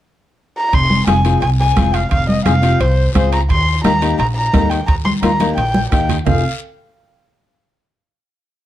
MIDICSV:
0, 0, Header, 1, 6, 480
1, 0, Start_track
1, 0, Key_signature, -4, "minor"
1, 0, Tempo, 346021
1, 1014, Time_signature, 4, 2, 24, 8
1, 12010, End_track
2, 0, Start_track
2, 0, Title_t, "Erhu"
2, 0, Program_c, 0, 110
2, 793, Note_on_c, 0, 82, 91
2, 1029, Note_on_c, 0, 84, 102
2, 1050, Note_off_c, 0, 82, 0
2, 1484, Note_off_c, 0, 84, 0
2, 1492, Note_on_c, 0, 80, 91
2, 1939, Note_off_c, 0, 80, 0
2, 1970, Note_on_c, 0, 80, 96
2, 2079, Note_off_c, 0, 80, 0
2, 2219, Note_on_c, 0, 80, 96
2, 2700, Note_on_c, 0, 77, 82
2, 2721, Note_off_c, 0, 80, 0
2, 2931, Note_off_c, 0, 77, 0
2, 2939, Note_on_c, 0, 77, 94
2, 3160, Note_off_c, 0, 77, 0
2, 3181, Note_on_c, 0, 75, 80
2, 3397, Note_off_c, 0, 75, 0
2, 3406, Note_on_c, 0, 77, 90
2, 3890, Note_on_c, 0, 72, 81
2, 3911, Note_off_c, 0, 77, 0
2, 4367, Note_off_c, 0, 72, 0
2, 4375, Note_on_c, 0, 72, 84
2, 4599, Note_off_c, 0, 72, 0
2, 4617, Note_on_c, 0, 82, 87
2, 4725, Note_off_c, 0, 82, 0
2, 4858, Note_on_c, 0, 84, 96
2, 5304, Note_off_c, 0, 84, 0
2, 5331, Note_on_c, 0, 82, 91
2, 5781, Note_off_c, 0, 82, 0
2, 5811, Note_on_c, 0, 82, 95
2, 5920, Note_off_c, 0, 82, 0
2, 6043, Note_on_c, 0, 82, 88
2, 6518, Note_on_c, 0, 79, 79
2, 6539, Note_off_c, 0, 82, 0
2, 6746, Note_off_c, 0, 79, 0
2, 6754, Note_on_c, 0, 82, 94
2, 6868, Note_off_c, 0, 82, 0
2, 7003, Note_on_c, 0, 84, 80
2, 7115, Note_off_c, 0, 84, 0
2, 7242, Note_on_c, 0, 82, 85
2, 7696, Note_off_c, 0, 82, 0
2, 7721, Note_on_c, 0, 79, 86
2, 8176, Note_off_c, 0, 79, 0
2, 8223, Note_on_c, 0, 79, 73
2, 8556, Note_off_c, 0, 79, 0
2, 8695, Note_on_c, 0, 77, 79
2, 8920, Note_off_c, 0, 77, 0
2, 12010, End_track
3, 0, Start_track
3, 0, Title_t, "Nylon-string guitar"
3, 0, Program_c, 1, 24
3, 1482, Note_on_c, 1, 60, 65
3, 1493, Note_on_c, 1, 65, 64
3, 1500, Note_on_c, 1, 68, 75
3, 1572, Note_off_c, 1, 60, 0
3, 1578, Note_off_c, 1, 65, 0
3, 1581, Note_off_c, 1, 68, 0
3, 1728, Note_on_c, 1, 60, 61
3, 1736, Note_on_c, 1, 65, 55
3, 1744, Note_on_c, 1, 68, 76
3, 1983, Note_off_c, 1, 60, 0
3, 1987, Note_off_c, 1, 65, 0
3, 1991, Note_off_c, 1, 68, 0
3, 2439, Note_on_c, 1, 60, 64
3, 2447, Note_on_c, 1, 65, 60
3, 2452, Note_on_c, 1, 68, 69
3, 2783, Note_off_c, 1, 60, 0
3, 2787, Note_off_c, 1, 65, 0
3, 2788, Note_off_c, 1, 68, 0
3, 3402, Note_on_c, 1, 60, 64
3, 3408, Note_on_c, 1, 65, 60
3, 3414, Note_on_c, 1, 68, 80
3, 3493, Note_off_c, 1, 60, 0
3, 3494, Note_off_c, 1, 65, 0
3, 3498, Note_off_c, 1, 68, 0
3, 3636, Note_on_c, 1, 60, 62
3, 3644, Note_on_c, 1, 65, 58
3, 3648, Note_on_c, 1, 67, 73
3, 3898, Note_off_c, 1, 60, 0
3, 3900, Note_off_c, 1, 65, 0
3, 3904, Note_off_c, 1, 67, 0
3, 4366, Note_on_c, 1, 60, 62
3, 4373, Note_on_c, 1, 65, 59
3, 4379, Note_on_c, 1, 68, 74
3, 4707, Note_off_c, 1, 60, 0
3, 4711, Note_off_c, 1, 65, 0
3, 4713, Note_off_c, 1, 68, 0
3, 5327, Note_on_c, 1, 58, 69
3, 5333, Note_on_c, 1, 63, 64
3, 5341, Note_on_c, 1, 67, 72
3, 5416, Note_off_c, 1, 58, 0
3, 5419, Note_off_c, 1, 63, 0
3, 5422, Note_off_c, 1, 67, 0
3, 5570, Note_on_c, 1, 58, 63
3, 5577, Note_on_c, 1, 63, 63
3, 5581, Note_on_c, 1, 67, 75
3, 5826, Note_off_c, 1, 58, 0
3, 5829, Note_off_c, 1, 63, 0
3, 5831, Note_off_c, 1, 67, 0
3, 6291, Note_on_c, 1, 58, 62
3, 6298, Note_on_c, 1, 63, 59
3, 6306, Note_on_c, 1, 67, 68
3, 6631, Note_off_c, 1, 58, 0
3, 6635, Note_off_c, 1, 63, 0
3, 6637, Note_off_c, 1, 67, 0
3, 7246, Note_on_c, 1, 58, 69
3, 7254, Note_on_c, 1, 63, 61
3, 7262, Note_on_c, 1, 65, 74
3, 7337, Note_off_c, 1, 58, 0
3, 7341, Note_off_c, 1, 63, 0
3, 7345, Note_off_c, 1, 65, 0
3, 7494, Note_on_c, 1, 58, 66
3, 7502, Note_on_c, 1, 63, 59
3, 7503, Note_on_c, 1, 67, 70
3, 7749, Note_off_c, 1, 58, 0
3, 7750, Note_off_c, 1, 63, 0
3, 7753, Note_off_c, 1, 67, 0
3, 8203, Note_on_c, 1, 58, 63
3, 8211, Note_on_c, 1, 63, 59
3, 8217, Note_on_c, 1, 67, 71
3, 8547, Note_off_c, 1, 58, 0
3, 8551, Note_off_c, 1, 63, 0
3, 8553, Note_off_c, 1, 67, 0
3, 8687, Note_on_c, 1, 60, 80
3, 8691, Note_on_c, 1, 65, 70
3, 8691, Note_on_c, 1, 68, 80
3, 8916, Note_off_c, 1, 60, 0
3, 8916, Note_off_c, 1, 68, 0
3, 8917, Note_off_c, 1, 65, 0
3, 12010, End_track
4, 0, Start_track
4, 0, Title_t, "Upright bass"
4, 0, Program_c, 2, 32
4, 1013, Note_on_c, 2, 29, 80
4, 1397, Note_off_c, 2, 29, 0
4, 1486, Note_on_c, 2, 29, 93
4, 1873, Note_off_c, 2, 29, 0
4, 1967, Note_on_c, 2, 36, 85
4, 2354, Note_off_c, 2, 36, 0
4, 2453, Note_on_c, 2, 29, 79
4, 2838, Note_off_c, 2, 29, 0
4, 2932, Note_on_c, 2, 29, 85
4, 3317, Note_off_c, 2, 29, 0
4, 3406, Note_on_c, 2, 29, 91
4, 3793, Note_off_c, 2, 29, 0
4, 3886, Note_on_c, 2, 36, 89
4, 4274, Note_off_c, 2, 36, 0
4, 4374, Note_on_c, 2, 37, 89
4, 4856, Note_off_c, 2, 37, 0
4, 4856, Note_on_c, 2, 39, 88
4, 5241, Note_off_c, 2, 39, 0
4, 5328, Note_on_c, 2, 39, 89
4, 5716, Note_off_c, 2, 39, 0
4, 5811, Note_on_c, 2, 34, 88
4, 6198, Note_off_c, 2, 34, 0
4, 6296, Note_on_c, 2, 39, 83
4, 6681, Note_off_c, 2, 39, 0
4, 6772, Note_on_c, 2, 39, 84
4, 7159, Note_off_c, 2, 39, 0
4, 7245, Note_on_c, 2, 39, 86
4, 7634, Note_off_c, 2, 39, 0
4, 7724, Note_on_c, 2, 34, 80
4, 8114, Note_off_c, 2, 34, 0
4, 8214, Note_on_c, 2, 39, 82
4, 8600, Note_off_c, 2, 39, 0
4, 8691, Note_on_c, 2, 29, 82
4, 8918, Note_off_c, 2, 29, 0
4, 12010, End_track
5, 0, Start_track
5, 0, Title_t, "Two-headed folk drums"
5, 1015, Note_on_c, 9, 36, 73
5, 1154, Note_off_c, 9, 36, 0
5, 1495, Note_on_c, 9, 37, 76
5, 1633, Note_off_c, 9, 37, 0
5, 2452, Note_on_c, 9, 37, 78
5, 2453, Note_on_c, 9, 36, 70
5, 2591, Note_off_c, 9, 37, 0
5, 2592, Note_off_c, 9, 36, 0
5, 2935, Note_on_c, 9, 36, 69
5, 3073, Note_off_c, 9, 36, 0
5, 3414, Note_on_c, 9, 37, 80
5, 3553, Note_off_c, 9, 37, 0
5, 4375, Note_on_c, 9, 36, 80
5, 4376, Note_on_c, 9, 37, 77
5, 4514, Note_off_c, 9, 36, 0
5, 4515, Note_off_c, 9, 37, 0
5, 4856, Note_on_c, 9, 36, 76
5, 4995, Note_off_c, 9, 36, 0
5, 5339, Note_on_c, 9, 37, 74
5, 5478, Note_off_c, 9, 37, 0
5, 6298, Note_on_c, 9, 36, 74
5, 6299, Note_on_c, 9, 37, 74
5, 6436, Note_off_c, 9, 36, 0
5, 6438, Note_off_c, 9, 37, 0
5, 6775, Note_on_c, 9, 36, 75
5, 6914, Note_off_c, 9, 36, 0
5, 7255, Note_on_c, 9, 37, 78
5, 7394, Note_off_c, 9, 37, 0
5, 8214, Note_on_c, 9, 37, 72
5, 8215, Note_on_c, 9, 36, 77
5, 8353, Note_off_c, 9, 37, 0
5, 8354, Note_off_c, 9, 36, 0
5, 8695, Note_on_c, 9, 36, 84
5, 8834, Note_off_c, 9, 36, 0
5, 12010, End_track
6, 0, Start_track
6, 0, Title_t, "Drums"
6, 1013, Note_on_c, 9, 74, 67
6, 1016, Note_on_c, 9, 65, 61
6, 1152, Note_off_c, 9, 74, 0
6, 1154, Note_off_c, 9, 65, 0
6, 1252, Note_on_c, 9, 63, 64
6, 1390, Note_off_c, 9, 63, 0
6, 1490, Note_on_c, 9, 65, 64
6, 1492, Note_on_c, 9, 63, 70
6, 1492, Note_on_c, 9, 73, 64
6, 1628, Note_off_c, 9, 65, 0
6, 1630, Note_off_c, 9, 63, 0
6, 1631, Note_off_c, 9, 73, 0
6, 1731, Note_on_c, 9, 65, 58
6, 1734, Note_on_c, 9, 73, 71
6, 1869, Note_off_c, 9, 65, 0
6, 1873, Note_off_c, 9, 73, 0
6, 1972, Note_on_c, 9, 65, 62
6, 1973, Note_on_c, 9, 74, 63
6, 2110, Note_off_c, 9, 65, 0
6, 2112, Note_off_c, 9, 74, 0
6, 2450, Note_on_c, 9, 65, 65
6, 2451, Note_on_c, 9, 63, 80
6, 2453, Note_on_c, 9, 73, 65
6, 2589, Note_off_c, 9, 63, 0
6, 2589, Note_off_c, 9, 65, 0
6, 2591, Note_off_c, 9, 73, 0
6, 2688, Note_on_c, 9, 65, 65
6, 2692, Note_on_c, 9, 73, 61
6, 2827, Note_off_c, 9, 65, 0
6, 2830, Note_off_c, 9, 73, 0
6, 2926, Note_on_c, 9, 74, 65
6, 2928, Note_on_c, 9, 65, 63
6, 3064, Note_off_c, 9, 74, 0
6, 3067, Note_off_c, 9, 65, 0
6, 3169, Note_on_c, 9, 63, 65
6, 3308, Note_off_c, 9, 63, 0
6, 3407, Note_on_c, 9, 65, 66
6, 3408, Note_on_c, 9, 63, 75
6, 3411, Note_on_c, 9, 73, 59
6, 3546, Note_off_c, 9, 65, 0
6, 3547, Note_off_c, 9, 63, 0
6, 3550, Note_off_c, 9, 73, 0
6, 3648, Note_on_c, 9, 73, 72
6, 3652, Note_on_c, 9, 65, 60
6, 3786, Note_off_c, 9, 73, 0
6, 3790, Note_off_c, 9, 65, 0
6, 3892, Note_on_c, 9, 65, 65
6, 3892, Note_on_c, 9, 74, 65
6, 4031, Note_off_c, 9, 65, 0
6, 4031, Note_off_c, 9, 74, 0
6, 4371, Note_on_c, 9, 63, 80
6, 4372, Note_on_c, 9, 65, 65
6, 4375, Note_on_c, 9, 73, 66
6, 4510, Note_off_c, 9, 63, 0
6, 4511, Note_off_c, 9, 65, 0
6, 4514, Note_off_c, 9, 73, 0
6, 4612, Note_on_c, 9, 73, 62
6, 4614, Note_on_c, 9, 65, 66
6, 4751, Note_off_c, 9, 73, 0
6, 4752, Note_off_c, 9, 65, 0
6, 4849, Note_on_c, 9, 74, 67
6, 4856, Note_on_c, 9, 65, 63
6, 4987, Note_off_c, 9, 74, 0
6, 4995, Note_off_c, 9, 65, 0
6, 5331, Note_on_c, 9, 73, 64
6, 5333, Note_on_c, 9, 63, 76
6, 5336, Note_on_c, 9, 65, 64
6, 5470, Note_off_c, 9, 73, 0
6, 5471, Note_off_c, 9, 63, 0
6, 5475, Note_off_c, 9, 65, 0
6, 5572, Note_on_c, 9, 73, 74
6, 5579, Note_on_c, 9, 65, 57
6, 5711, Note_off_c, 9, 73, 0
6, 5718, Note_off_c, 9, 65, 0
6, 5810, Note_on_c, 9, 74, 63
6, 5822, Note_on_c, 9, 65, 61
6, 5949, Note_off_c, 9, 74, 0
6, 5960, Note_off_c, 9, 65, 0
6, 6291, Note_on_c, 9, 63, 79
6, 6293, Note_on_c, 9, 73, 68
6, 6295, Note_on_c, 9, 65, 66
6, 6295, Note_on_c, 9, 66, 69
6, 6430, Note_off_c, 9, 63, 0
6, 6432, Note_off_c, 9, 73, 0
6, 6434, Note_off_c, 9, 65, 0
6, 6434, Note_off_c, 9, 66, 0
6, 6535, Note_on_c, 9, 73, 63
6, 6536, Note_on_c, 9, 65, 62
6, 6673, Note_off_c, 9, 73, 0
6, 6675, Note_off_c, 9, 65, 0
6, 6774, Note_on_c, 9, 65, 67
6, 6778, Note_on_c, 9, 74, 65
6, 6913, Note_off_c, 9, 65, 0
6, 6916, Note_off_c, 9, 74, 0
6, 7013, Note_on_c, 9, 63, 68
6, 7152, Note_off_c, 9, 63, 0
6, 7250, Note_on_c, 9, 63, 75
6, 7253, Note_on_c, 9, 73, 60
6, 7257, Note_on_c, 9, 65, 67
6, 7388, Note_off_c, 9, 63, 0
6, 7392, Note_off_c, 9, 73, 0
6, 7395, Note_off_c, 9, 65, 0
6, 7490, Note_on_c, 9, 63, 79
6, 7492, Note_on_c, 9, 73, 68
6, 7497, Note_on_c, 9, 65, 60
6, 7629, Note_off_c, 9, 63, 0
6, 7631, Note_off_c, 9, 73, 0
6, 7635, Note_off_c, 9, 65, 0
6, 7733, Note_on_c, 9, 74, 63
6, 7737, Note_on_c, 9, 65, 65
6, 7871, Note_off_c, 9, 74, 0
6, 7876, Note_off_c, 9, 65, 0
6, 7968, Note_on_c, 9, 63, 90
6, 8107, Note_off_c, 9, 63, 0
6, 8212, Note_on_c, 9, 65, 64
6, 8215, Note_on_c, 9, 73, 69
6, 8351, Note_off_c, 9, 65, 0
6, 8353, Note_off_c, 9, 73, 0
6, 8450, Note_on_c, 9, 64, 68
6, 8455, Note_on_c, 9, 65, 64
6, 8459, Note_on_c, 9, 73, 62
6, 8589, Note_off_c, 9, 64, 0
6, 8594, Note_off_c, 9, 65, 0
6, 8598, Note_off_c, 9, 73, 0
6, 8691, Note_on_c, 9, 66, 89
6, 8692, Note_on_c, 9, 64, 93
6, 8697, Note_on_c, 9, 74, 87
6, 8830, Note_off_c, 9, 66, 0
6, 8831, Note_off_c, 9, 64, 0
6, 8836, Note_off_c, 9, 74, 0
6, 12010, End_track
0, 0, End_of_file